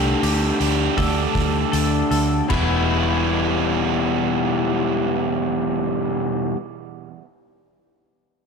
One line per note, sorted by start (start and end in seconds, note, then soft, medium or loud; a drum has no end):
0.00 0.14 C2 medium
0.00 0.57 D3 medium
0.00 0.58 A3 medium
0.00 0.58 D4 medium
0.00 0.58 G4 medium
0.00 0.23 A4 medium
0.23 0.50 D2 medium
0.23 0.97 G4 medium
0.23 open hi-hat medium
0.60 0.88 D2 medium
0.60 2.49 D3 medium
0.60 2.49 A3 medium
0.60 2.48 D4 medium
0.60 2.48 G4 medium
0.60 open hi-hat soft
0.97 1.25 D2 medium
0.97 1.71 A4 medium
0.97 kick medium
0.97 open hi-hat medium
1.35 1.63 D2 medium
1.35 kick medium
1.35 open hi-hat soft
1.72 2.02 D2 medium
1.72 2.10 A4 medium
1.72 open hi-hat medium
2.11 2.40 D2 medium
2.11 2.49 A4 medium
2.11 open hi-hat soft
2.49 6.52 E1 medium
2.49 6.54 E2 medium
2.49 6.56 B2 medium
2.49 6.56 E3 medium
2.49 6.57 G3 medium
2.49 6.58 B3 medium
2.49 3.39 E4 medium
2.49 kick medium
2.49 floor tom medium
2.49 crash medium
2.54 6.58 E4 medium